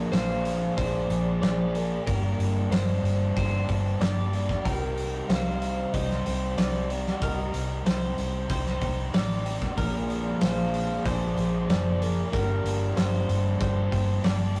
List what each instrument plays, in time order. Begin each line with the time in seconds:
Already playing: overdriven electric guitar A#2 D3 F3 A#3 D4 G#4, clean electric guitar A#4
0.12 fingered electric bass A#1, overdriven electric guitar F3 A#3 D4 G#4, clean electric guitar C5, soft synth lead F5, snare, open hi-hat
0.45 open hi-hat
0.77 fingered electric bass A#1, overdriven electric guitar F3 A#3 D4 G#4, clean electric guitar C5, soft synth lead D5, kick, open hi-hat
1.10 fingered electric bass A#1, overdriven electric guitar F3 A#3 D4 G#4, open hi-hat
1.42 fingered electric bass A#1, overdriven electric guitar F3 A#3 D4 G#4, soft synth lead C5, clean electric guitar D5, snare, open hi-hat
1.75 overdriven electric guitar F3 A#3 D4 G#4, soft synth lead A#4, open hi-hat
2.07 fingered electric bass G1, overdriven electric guitar G2 D3 G3 A#3 D4 G4, clean electric guitar A#4, kick, open hi-hat
2.39 fingered electric bass G1, open hi-hat
2.71 fingered electric bass G1, overdriven electric guitar G3 A#3 D4 G4, clean electric guitar C5, snare, open hi-hat
3.03 fingered electric bass G1, open hi-hat
3.36 fingered electric bass G1, overdriven electric guitar G3 A#3 D4 G4, clean electric guitar C5, kick, open hi-hat
3.68 fingered electric bass G1, overdriven electric guitar G3 A#3 D4 G4, kick, open hi-hat
3.99 fingered electric bass G1, overdriven electric guitar G3 A#3 D4 G4, soft synth lead D5, clean electric guitar D5, snare, open hi-hat
4.32 overdriven electric guitar G3 A#3 D4 G4, open hi-hat
4.49 kick, snare
4.64 fingered electric bass C2, overdriven electric guitar C3 G3 C4 D#4 G4, clean electric guitar A#4, soft synth lead G5, kick, open hi-hat
4.98 open hi-hat
5.28 fingered electric bass C2, overdriven electric guitar G3 C4 D#4 G4, clean electric guitar C5, soft synth lead F5, snare, open hi-hat
5.62 open hi-hat
5.92 fingered electric bass C2, overdriven electric guitar G3 C4 D#4 G4, clean electric guitar C5, soft synth lead D#5, kick, open hi-hat
6.11 snare
6.25 fingered electric bass C2, overdriven electric guitar C4 D#4 G4, soft synth lead C5, open hi-hat
6.57 fingered electric bass C2, overdriven electric guitar G3 C4 D#4 G4, clean electric guitar D5, snare, open hi-hat
6.90 overdriven electric guitar C4 D#4 G4, soft synth lead D5, open hi-hat
7.06 snare
7.21 fingered electric bass C2, overdriven electric guitar C3 G3 C4 D#4 G4, clean electric guitar A#4, soft synth lead D#5, kick, open hi-hat
7.54 fingered electric bass C2, open hi-hat
7.85 fingered electric bass C2, overdriven electric guitar G3 C4 D#4 G4, clean electric guitar C5, snare, open hi-hat
8.18 fingered electric bass C2, open hi-hat
8.49 fingered electric bass C2, overdriven electric guitar G3 C4 D#4 G4, clean electric guitar C5, kick, open hi-hat
8.66 snare
8.81 fingered electric bass C2, overdriven electric guitar C4 D#4 G4, kick, open hi-hat
9.14 fingered electric bass A1, overdriven electric guitar G3 C4 D#4 G4, clean electric guitar D5, snare, open hi-hat
9.46 overdriven electric guitar C4 D#4 G4, open hi-hat
9.62 kick, snare
9.77 fingered electric bass A#1, overdriven electric guitar A#2 D3 F3 A#3 D4 G#4, clean electric guitar A#4, kick, open hi-hat
10.10 open hi-hat
10.40 fingered electric bass A#1, overdriven electric guitar F3 A#3 D4 G#4, clean electric guitar C5, soft synth lead F5, snare, open hi-hat
10.74 open hi-hat
11.05 fingered electric bass A#1, overdriven electric guitar F3 A#3 D4 G#4, clean electric guitar C5, soft synth lead D5, kick, open hi-hat
11.37 fingered electric bass A#1, overdriven electric guitar F3 A#3 D4 G#4, open hi-hat
11.69 fingered electric bass F#1, overdriven electric guitar F3 A#3 D4 G#4, soft synth lead C5, clean electric guitar D5, snare, open hi-hat
12.01 overdriven electric guitar F3 A#3 D4 G#4, soft synth lead A#4, open hi-hat
12.32 fingered electric bass G1, overdriven electric guitar G2 D3 G3 A#3 D4 G4, clean electric guitar A#4, kick, open hi-hat
12.64 fingered electric bass G1, open hi-hat
12.96 fingered electric bass G1, overdriven electric guitar G3 A#3 D4 G4, clean electric guitar C5, snare, open hi-hat
13.29 fingered electric bass G1, open hi-hat
13.60 fingered electric bass G1, overdriven electric guitar G3 A#3 D4 G4, clean electric guitar C5, kick, open hi-hat
13.91 fingered electric bass G1, overdriven electric guitar G3 A#3 D4 G4, kick, open hi-hat
14.24 fingered electric bass G1, overdriven electric guitar G3 A#3 D4 G4, clean electric guitar D5, snare, open hi-hat
14.56 overdriven electric guitar D4 G4, open hi-hat